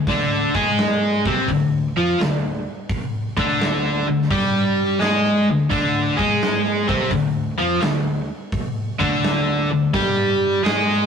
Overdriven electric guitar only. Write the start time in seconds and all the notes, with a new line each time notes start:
0.08 D3 D4
0.54 G#3 G#4
1.26 C3 C4
1.49 D3
1.97 F3 F4
2.20 D3
3.37 D3 D4
4.08 D3
4.31 G3 G4
5.00 G#3 G#4
5.50 D3
5.70 D3 D4
6.16 G#3 G#4
6.87 C3 C4
7.11 D3
7.58 F3 F4
7.81 D3
8.99 D3 D4
9.71 D3
9.94 G3 G4
10.64 G#3 G#4